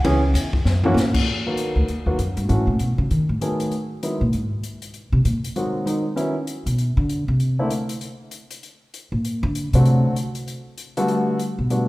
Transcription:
0.04 upright bass C#2, grand piano E3 B3 C#4 G#4, ride
0.34 upright bass E2, hi-hat pedal, ride
0.53 kick
0.65 upright bass F#2, snare
0.84 grand piano E3 A#3 C#4 F#4, floor tom
0.94 upright bass A#2, snare, hi-hat pedal
1.14 kick, crash
1.46 grand piano D#3 F#3 A#3 B3 F#4
1.57 closed hi-hat
1.75 upright bass D2
1.88 upright bass D#2, closed hi-hat
2.06 upright bass E2, grand piano D#3 F#3 A#3 B3 F#4
2.19 upright bass F#2, closed hi-hat
2.37 upright bass G2, closed hi-hat
2.49 upright bass A2, grand piano E3 F#3 A3 C#4 F#4, closed hi-hat
2.67 upright bass A#2
2.79 upright bass B2, closed hi-hat
2.98 upright bass C#3
3.11 upright bass D#3, closed hi-hat
3.29 upright bass A2
3.41 grand piano D#3 F#3 A3 B3 G#4, closed hi-hat
3.60 closed hi-hat
3.71 closed hi-hat
4.03 grand piano D#3 F#3 G#3 B3 E4, closed hi-hat
4.21 upright bass A#2
4.33 upright bass G#2, closed hi-hat
4.64 closed hi-hat
4.82 closed hi-hat
4.94 closed hi-hat
5.12 upright bass C3
5.25 upright bass A#2, closed hi-hat
5.44 closed hi-hat
5.56 grand piano D#3 F#3 G#3 C4 F#4, closed hi-hat
5.86 grand piano D#3 F#3 G#3 C4 D#4, closed hi-hat
6.16 grand piano D#3 F#3 B3 C#4 E4, closed hi-hat
6.47 closed hi-hat
6.66 upright bass B2, closed hi-hat
6.78 closed hi-hat
6.97 upright bass D3
7.09 closed hi-hat
7.28 upright bass C3
7.40 closed hi-hat
7.59 grand piano D3 A3 A#3 C4 E4
7.70 closed hi-hat
7.89 closed hi-hat
8.01 closed hi-hat
8.31 closed hi-hat
8.51 closed hi-hat
8.63 closed hi-hat
8.94 closed hi-hat
9.12 upright bass A#2
9.25 closed hi-hat
9.43 upright bass D3
9.55 closed hi-hat
9.73 upright bass C3, grand piano D3 F#3 A3 C4 F#4, closed hi-hat
9.85 closed hi-hat
10.16 closed hi-hat
10.35 closed hi-hat
10.48 closed hi-hat
10.78 closed hi-hat
10.97 grand piano D3 G3 A3 B3 F#4, closed hi-hat
11.08 closed hi-hat
11.39 closed hi-hat
11.59 upright bass B2
11.70 grand piano D3 G3 A3 B3 F#4, closed hi-hat

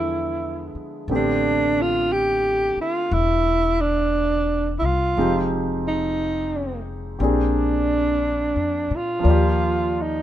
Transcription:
Already playing: upright bass E2, grand piano D3 F3 G#3 B3 E4, alto saxophone E4
0.75 muted upright bass stroke
1.08 upright bass A1, grand piano D3 A3 B3 C4 G4
1.15 alto saxophone D4
1.81 alto saxophone F4
2.12 alto saxophone G4
2.77 muted upright bass stroke
2.81 alto saxophone F4
3.11 upright bass E1, alto saxophone E4
3.81 alto saxophone D4
4.78 upright bass C2, alto saxophone E4
4.85 alto saxophone F4
5.17 upright bass F1, grand piano F3 G#3 C4 D#4 G4
5.87 alto saxophone D#4
7.19 upright bass A#1, grand piano A#3 C4 D4 G4
7.23 grand piano G#4
7.28 alto saxophone D4
8.56 upright bass F2
8.91 upright bass A#2
8.96 alto saxophone F4
9.19 grand piano F3 A#3
9.24 upright bass D#2, grand piano D5
9.29 grand piano G4
10.01 alto saxophone D#4

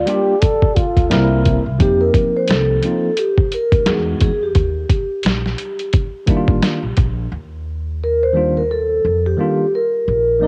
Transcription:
Already playing: vibraphone D5
0.06 tine electric piano G3 A#3 D4 F4 G4, trombone G4, closed hi-hat
0.41 trombone A4, kick, closed hi-hat
0.62 kick
0.76 trombone F4, kick, closed hi-hat
0.97 upright bass D2, kick, closed hi-hat
1.10 upright bass C2, tine electric piano G3 A#3 C4 E4 A#4, trombone E4, snare, closed hi-hat
1.45 kick, closed hi-hat
1.66 upright bass C2
1.78 upright bass F2, tine electric piano F3 A#3 C4 D#4 G4, vibraphone G4, kick, closed hi-hat
2.01 vibraphone A#4
2.14 kick, closed hi-hat
2.37 vibraphone C5
2.48 upright bass C2, vibraphone A4, snare, closed hi-hat
2.82 tine electric piano F3 A#3 C4 D#4 F4, closed hi-hat
3.17 vibraphone G4, closed hi-hat
3.38 kick
3.52 vibraphone A#4, closed hi-hat
3.72 upright bass D2, kick, closed hi-hat
3.85 upright bass E2, tine electric piano E3 G#3 B3 D#4, vibraphone G#4, snare, closed hi-hat
3.90 tine electric piano F#4
4.21 upright bass E2, vibraphone G#4, kick, closed hi-hat
4.43 vibraphone G4
4.55 upright bass D#2, kick, closed hi-hat
4.90 kick, closed hi-hat
5.23 upright bass A#1, snare, closed hi-hat
5.46 snare
5.58 closed hi-hat
5.79 closed hi-hat
5.93 kick, closed hi-hat
6.27 tine electric piano D#3 G3 A#3 D4 E4, kick, closed hi-hat
6.37 tine electric piano F4
6.48 upright bass A1, kick
6.63 snare, closed hi-hat
6.83 upright bass A#1
6.97 upright bass A#1, kick, closed hi-hat
7.32 upright bass D#2
8.04 vibraphone A#4
8.23 vibraphone C5
8.33 tine electric piano D#3 G3 A#3 D4 F4
8.57 vibraphone A#4
8.71 vibraphone A4
9.05 upright bass F2
9.26 vibraphone G4
9.37 tine electric piano D#3 G3 A#3 D4 F4
9.75 vibraphone A#4
10.08 upright bass A#1
10.40 tine electric piano F3 A#3 C4 A#4 D5, trombone D#4

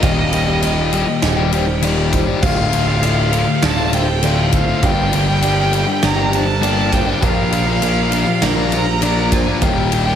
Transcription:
Already playing: clean electric guitar A#3, violin D#5
0.00 picked electric bass D#1, overdriven electric guitar D#2 A#2 D#3 G3 G4, felt piano F5, kick, ride
0.31 overdriven electric guitar A#2 D#3 G3 G4, ride
0.47 overdriven electric guitar D#3 G3 G4
0.61 overdriven electric guitar D#2 A#2 D#3 G3 G4, felt piano D#5, ride
0.91 overdriven electric guitar A#2 D#3 G3 G4, ride
1.07 muted overdriven electric guitar stroke
1.22 picked electric bass D#1, clean electric guitar G4, felt piano D#5, snare, ride
1.36 overdriven electric guitar D#3 G3 G4
1.52 overdriven electric guitar A#2 D#3 G3 G4, felt piano C5, ride
1.67 muted overdriven electric guitar stroke
1.81 overdriven electric guitar D#2 A#2 D#3 G3 G4, felt piano D5, ride
2.12 clean electric guitar G3, felt piano C5, kick, snare, ride
2.27 overdriven electric guitar D#3 G3 G4
2.42 picked electric bass D1, overdriven electric guitar D2 A2 D3 A3 F4, felt piano F5, violin F5, kick, crash
2.71 overdriven electric guitar A2 D3 A3 F4, ride
2.87 overdriven electric guitar D3 A3 F4
3.01 overdriven electric guitar D2 A2 D3 A3 F4, felt piano D5, ride
3.31 overdriven electric guitar A2 D3 A3 F4, ride
3.47 muted overdriven electric guitar stroke
3.62 picked electric bass D1, clean electric guitar F4, felt piano D5, violin A5, snare, ride
3.77 overdriven electric guitar D3 A3 F4
3.91 overdriven electric guitar A2 D3 A3 F4, felt piano C5, violin G5, ride
4.08 muted overdriven electric guitar stroke
4.23 overdriven electric guitar D2 A2 D3 A3 F4, felt piano D5, ride
4.52 clean electric guitar A3, felt piano C5, violin F5, kick, ride
4.67 overdriven electric guitar D3 A3 F4
4.82 picked electric bass G1, overdriven electric guitar G2 D3 G3 A#3 D4 G4, felt piano F5, violin G5, kick, ride
5.13 clean electric guitar D3, overdriven electric guitar G3 A#3 D4 G4, ride
5.28 overdriven electric guitar G3 A#3 D4 G4
5.42 overdriven electric guitar G2 D3 G3 A#3 D4 G4, felt piano D5, ride
5.71 overdriven electric guitar G3 A#3 D4 G4, ride
5.87 muted overdriven electric guitar stroke
6.02 picked electric bass G1, clean electric guitar G4, felt piano D5, violin A#5, snare, ride
6.16 overdriven electric guitar G3 A#3 D4 G4
6.31 overdriven electric guitar G3 A#3 D4 G4, felt piano C5, violin A5, ride
6.46 muted overdriven electric guitar stroke
6.61 overdriven electric guitar G2 D3 G3 A#3 D4 G4, felt piano D5, ride
6.93 clean electric guitar D4, felt piano C5, violin G5, kick, snare, ride
7.06 overdriven electric guitar G3 A#3 D4 G4
7.21 picked electric bass A#1, overdriven electric guitar A#2 F3 A#3 D4 F4 A#4, felt piano F5, violin F5, kick, ride
7.51 clean electric guitar F3, overdriven electric guitar A#3 D4 F4 A#4, ride
7.66 overdriven electric guitar A#3 D4 F4 A#4
7.81 overdriven electric guitar A#2 F3 A#3 D4 F4 A#4, felt piano D5, ride
8.11 overdriven electric guitar A#3 D4 F4 A#4, ride
8.27 muted overdriven electric guitar stroke
8.42 picked electric bass A#1, clean electric guitar A#4, felt piano D5, violin A#5, snare, ride
8.56 overdriven electric guitar A#3 D4 F4 A#4
8.72 overdriven electric guitar A#3 D4 F4 A#4, felt piano C5, ride
8.87 muted overdriven electric guitar stroke
9.02 overdriven electric guitar A#2 F3 A#3 D4 F4 A#4, felt piano D5, ride
9.32 clean electric guitar F4, felt piano C5, violin G#5, kick, snare, ride
9.47 overdriven electric guitar A#3 D4 F4 A#4
9.62 picked electric bass D#1, overdriven electric guitar D#2 A#2 D#3 G3 G4, felt piano F5, violin G5, kick, ride
9.91 overdriven electric guitar A#2 D#3 G3 G4, ride
10.06 overdriven electric guitar D#3 G3 G4

